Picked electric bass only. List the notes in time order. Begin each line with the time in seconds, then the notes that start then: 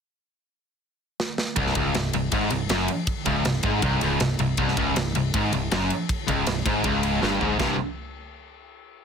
1.57 C1
1.75 C#1
1.95 C1
2.14 C1
2.32 G#1
2.51 C1
2.70 F#1
3.26 C#1
3.45 C1
3.63 G#1
3.83 C1
4.01 C#1
4.20 C1
4.39 C1
4.58 C1
4.77 C#1
4.96 C1
5.15 C1
5.34 G#1
5.53 C1
5.72 F#1
6.28 C#1
6.47 C1
6.66 G#1
6.84 C#1
7.23 G1
7.41 G#1
7.60 C1